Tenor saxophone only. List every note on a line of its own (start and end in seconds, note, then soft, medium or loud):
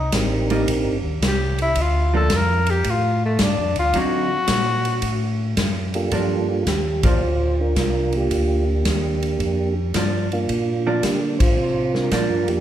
0.00 0.15 D#4 medium
1.27 1.59 G4 medium
1.62 1.83 E4 loud
1.81 2.16 F4 medium
2.16 2.38 A4 medium
2.36 2.72 A#4 loud
2.70 2.92 G4 loud
2.90 3.25 F4 medium
3.25 3.44 A3 medium
3.43 3.78 D4 medium
3.79 4.00 F4 medium
3.98 5.60 F#4 loud